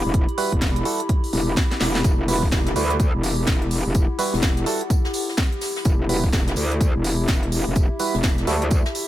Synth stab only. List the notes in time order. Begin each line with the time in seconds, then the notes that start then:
0.38 G3 E4 F#4 B4
0.85 G3 E4 F#4 A4
2.28 G3 E4 F#4 B4
2.76 G3 E4 F#4 B4
4.19 G3 E4 F#4 B4
4.66 G3 E4 F#4 A4
6.09 G3 E4 F#4 B4
8.00 G3 E4 F#4 B4
8.47 G3 E4 F#4 A4